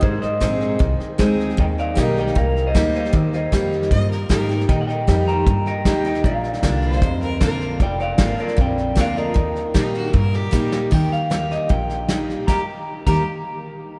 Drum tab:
CC |----------------|----------------|----------------|----------------|
HH |----p-------p---|----p-------p---|----p-------p---|----p-------p---|
SD |o-o-o-o-o-o-o-oo|o-o-o-ooo-o-o-oo|o-o-o-ooo-o-o-oo|o-o-o-o-o-o-o-oo|
BD |o---o---o---o---|o---o---o---o---|o---o---o---o---|o---o---o---o---|

CC |----------------|----------------|----------------|x---------------|
HH |----p-------p---|----p-------p---|----p-------p---|----p-------p---|
SD |o-ooo-ooo-o-o-o-|o-o-o-ooo-o-o-o-|o-o-o-o-o-o-o-o-|o-o-o-o-o-o-o-o-|
BD |o---o---o---o---|o---o---o---o---|o---o---o---o---|o-------o-------|

CC |------x---------|
HH |----------------|
SD |o---------------|
BD |o-----o---------|